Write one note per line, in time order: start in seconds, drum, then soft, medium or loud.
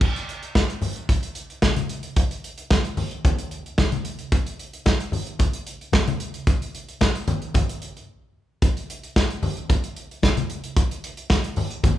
0.01 kick loud
0.01 crash medium
0.01 muted conga soft
0.16 closed hi-hat medium
0.29 closed hi-hat medium
0.43 closed hi-hat soft
0.55 kick loud
0.55 snare loud
0.55 high conga medium
0.70 closed hi-hat soft
0.81 open hi-hat medium
0.81 low conga medium
0.96 closed hi-hat soft
1.09 kick loud
1.09 closed hi-hat medium
1.09 muted conga medium
1.23 closed hi-hat medium
1.35 closed hi-hat medium
1.50 closed hi-hat soft
1.62 kick loud
1.62 snare loud
1.62 high conga medium
1.76 closed hi-hat medium
1.76 high conga medium
1.89 closed hi-hat medium
2.03 closed hi-hat medium
2.16 kick loud
2.16 closed hi-hat medium
2.16 muted conga medium
2.31 closed hi-hat medium
2.44 closed hi-hat medium
2.58 closed hi-hat medium
2.70 kick loud
2.70 snare loud
2.70 high conga medium
2.85 closed hi-hat soft
2.97 open hi-hat medium
2.97 muted conga soft
2.97 low conga medium
3.11 closed hi-hat soft
3.25 kick loud
3.25 closed hi-hat medium
3.25 muted conga medium
3.25 low conga medium
3.38 closed hi-hat medium
3.51 closed hi-hat medium
3.66 closed hi-hat soft
3.78 kick loud
3.78 snare loud
3.78 high conga medium
3.92 closed hi-hat soft
3.92 high conga medium
4.05 closed hi-hat medium
4.19 closed hi-hat medium
4.32 kick loud
4.32 closed hi-hat medium
4.32 muted conga medium
4.46 closed hi-hat medium
4.59 closed hi-hat medium
4.73 closed hi-hat soft
4.86 kick loud
4.86 snare loud
4.86 high conga medium
5.00 closed hi-hat soft
5.12 open hi-hat medium
5.12 low conga medium
5.27 closed hi-hat soft
5.39 kick loud
5.39 closed hi-hat medium
5.39 muted conga medium
5.53 closed hi-hat medium
5.67 closed hi-hat medium
5.81 closed hi-hat soft
5.92 kick loud
5.92 snare loud
5.92 high conga medium
6.07 closed hi-hat soft
6.07 high conga medium
6.20 closed hi-hat medium
6.34 closed hi-hat medium
6.47 kick loud
6.47 closed hi-hat medium
6.47 muted conga medium
6.62 closed hi-hat soft
6.75 closed hi-hat medium
6.88 closed hi-hat soft
7.01 kick loud
7.01 snare loud
7.01 high conga medium
7.15 closed hi-hat soft
7.28 closed hi-hat medium
7.28 muted conga soft
7.28 low conga medium
7.42 closed hi-hat soft
7.54 kick loud
7.54 closed hi-hat medium
7.54 muted conga medium
7.54 low conga medium
7.69 closed hi-hat medium
7.82 closed hi-hat medium
7.97 closed hi-hat soft
8.62 kick loud
8.62 closed hi-hat medium
8.62 muted conga medium
8.77 closed hi-hat soft
8.90 closed hi-hat medium
9.03 closed hi-hat soft
9.16 kick loud
9.16 snare loud
9.16 high conga medium
9.30 closed hi-hat soft
9.43 open hi-hat medium
9.43 muted conga soft
9.43 low conga medium
9.57 closed hi-hat soft
9.69 kick loud
9.69 closed hi-hat medium
9.69 muted conga medium
9.84 closed hi-hat medium
9.96 closed hi-hat medium
10.11 closed hi-hat soft
10.23 kick loud
10.23 snare loud
10.23 high conga medium
10.37 closed hi-hat soft
10.37 high conga medium
10.50 closed hi-hat medium
10.64 closed hi-hat medium
10.77 kick loud
10.77 closed hi-hat medium
10.77 muted conga medium
10.91 closed hi-hat soft
11.04 closed hi-hat medium
11.17 closed hi-hat medium
11.30 kick loud
11.30 snare loud
11.30 high conga medium
11.44 closed hi-hat medium
11.56 open hi-hat medium
11.56 low conga medium
11.71 closed hi-hat soft
11.84 kick loud
11.84 closed hi-hat medium
11.84 muted conga medium
11.84 low conga medium